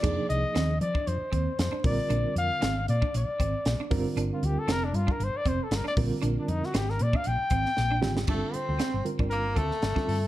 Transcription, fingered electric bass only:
X:1
M:4/4
L:1/16
Q:"Swing 16ths" 1/4=117
K:Bbmix
V:1 name="Fingered electric bass" clef=bass
F,, z C,, z E,,2 F, z F,, z E,, z F,, z B,,, z | B,,, z F,, z A,,,2 B,, z B,,, z A,,, z B,,, z G,,, z | G,,, z D,, z F,,,2 G,, z G,,, z F,,, z G,,, z B,,, z | B,,, z F,, z A,,,2 B,, z B,,, z A,,, z B,,,2 A,,,2 |
[K:Gm] G,,, z2 D,, z G,,, z G,,,3 D,, z G,,, z G,,2 |]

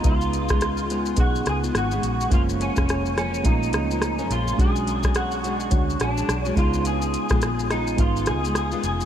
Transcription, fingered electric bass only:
X:1
M:4/4
L:1/16
Q:"Swing 16ths" 1/4=106
K:C#mix
V:1 name="Fingered electric bass" clef=bass
C,,8 B,,,2 C,,2 G,,,2 A,,,2 | F,,,3 E,,,4- E,,, A,,,2 C,,4 A,,,2 | B,,,8 =D,,2 A,,,2 B,,,2 C,,2- | C,,3 A,,,4- A,,, G,,,2 C,,4 E,,,2 |]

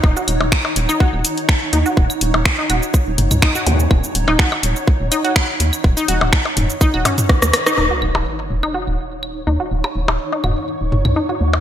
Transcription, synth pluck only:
X:1
M:4/4
L:1/16
Q:"Swing 16ths" 1/4=124
K:Ebm
V:1 name="Synth pluck"
E G z4 z E G z4 z E G | z4 z E G z4 z E G z2 | z3 E G z4 z E G z4 | z E G z4 z E G D z4 E |
E G z4 z E G z4 z E G | z4 z E G z4 z E G z2 |]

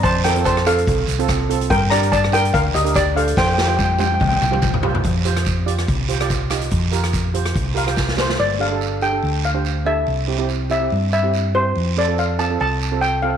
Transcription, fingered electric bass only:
X:1
M:4/4
L:1/8
Q:"Swing 16ths" 1/4=143
K:Fmix
V:1 name="Fingered electric bass" clef=bass
F,,4 C,, C,,3 | G,,4 D,, D,,3 | F,,4 C,, C,,3 | F,,4 C,,4 |
F,,4 C,,4 | G,,,4 D,,4 | C,,4 G,,4 | F,,4 C,,4 |]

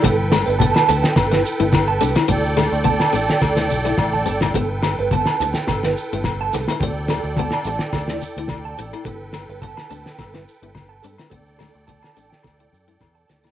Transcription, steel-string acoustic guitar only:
X:1
M:4/4
L:1/16
Q:"Swing 16ths" 1/4=106
K:G
V:1 name="Steel-string acoustic guitar"
B,2 A,2 B,2 D2 z E2 E2 z D E | B,2 A,2 B,2 D2 z E2 E2 z D E | B,2 A,2 B,2 D2 z E2 E2 z D E | B,2 D2 B,2 D2 z E2 E2 z D E |
B,2 A,2 B,2 D2 z E2 E2 z D E | B,2 A,2 B,2 D2 z E2 E2 z D E |]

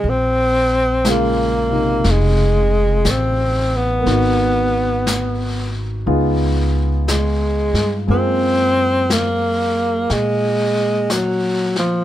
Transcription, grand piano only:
X:1
M:4/4
L:1/8
Q:"Swing" 1/4=60
K:Bbdor
V:1 name="Grand piano"
z2 [D,A,F] [C,E]4- [C,E] | [_CE_GB]4 [CEFA]4 | [A,B,CF]8 |]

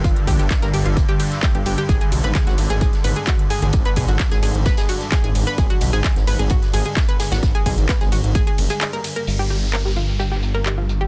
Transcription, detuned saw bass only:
X:1
M:4/4
L:1/16
Q:1/4=130
K:Ablyd
V:1 name="Detuned saw bass" clef=bass
G,,, z B,,, G,,, z G,,, G,,, G,,, z4 z G,,, G,,, z | A,,, z _C,, A,,, z A,,, A,,, A,,, z2 A,,, z4 A,,, | A,,, z _C,, A,,, z A,,, A,,, A,,, z4 z A,,, A,,, z | A,,, z _C,, A,,, z A,,, A,,, A,,, z2 A,,, z4 A,,, |
A,,, z _C,, A,,, z A,,, A,,, A,,, z2 ^F,,, z4 z | G,,,16 |]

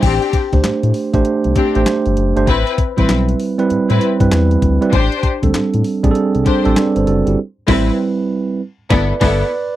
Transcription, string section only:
X:1
M:4/4
L:1/16
Q:"Swing 16ths" 1/4=98
K:Dmix
V:1 name="String section"
[CDG]2 z8 [CDG] z4 z | [CEB] z2 [CEB] z4 z [CEB] z6 | [DGc]2 z8 [DGc] z4 z | z2 [CEB]2 z6 [B,EA]2 [B,EA]2 z2 |]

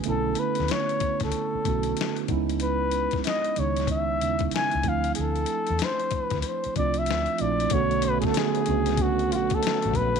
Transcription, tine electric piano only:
X:1
M:4/4
L:1/16
Q:"Swing 16ths" 1/4=94
K:Bdor
V:1 name="Tine electric piano"
[D,A,B,CE]6- [D,A,B,CE] z3 [D,A,B,CF]3 z [G,B,C^DE]2- | [G,B,C^DE]4- [G,B,CDE] z [^D,G,B,CD]3 z [C,G,B,CDE]4 [=F,A,=C=DE]2- | [=F,A,=CDE]4- [F,A,CDE] z4 z [F,A,CD=F]3 z [F,A,CDE]2 | [D,A,B,CF]3 [D,A,B,CA]3 [A,B,CDF]6- [A,B,CDF] z3 |]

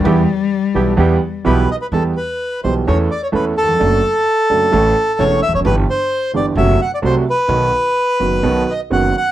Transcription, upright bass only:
X:1
M:4/4
L:1/16
Q:1/4=129
K:Em
V:1 name="Upright bass" clef=bass
E,,3/2 z4 z/2 B,,,3/2 z/2 E,,3/2 z2 z/2 B,,,3/2 z2 z/2 | E,,3/2 z4 z/2 B,,,3/2 z/2 E,,3/2 z2 z/2 E,,3/2 z2 z/2 | F,,,3/2 z4 z/2 F,,,3/2 z/2 A,,,3/2 z2 z/2 E,,,3/2 z E,,,/2 =F,,,/2 ^F,,,/2 | G,,,3/2 z4 z/2 G,,,3/2 z/2 F,,,3/2 z2 z/2 C,,3/2 z2 z/2 |
B,,,3/2 z4 z/2 F,,,3/2 z/2 B,,,3/2 z2 z/2 F,,,3/2 z2 z/2 |]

